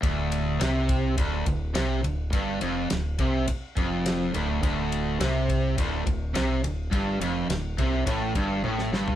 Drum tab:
RD |x-x-x-x-x-x-x-x-|x-x-x-x-x-x-x-x-|x-x-x-x-x-x-x-x-|x-x-x-x-x-x-----|
SD |----o-------o---|----o-------o---|----o-------o---|----o--------oo-|
T1 |----------------|----------------|----------------|------------o---|
FT |----------------|----------------|----------------|---------------o|
BD |o-----o-o-o-----|o-----o-o-o-----|o-----o-o-o-----|o-----o-o-o-----|